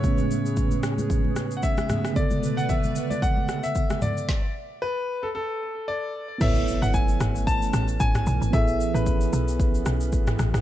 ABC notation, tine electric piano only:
X:1
M:4/4
L:1/8
Q:"Swing 16ths" 1/4=113
K:A
V:1 name="Tine electric piano"
[C,A,B,C]6- [C,A,B,C] [C,A,B,G] | [C,D,B,A]8 | z8 | [B,EABc]8 |
[B,EGAe]8 |]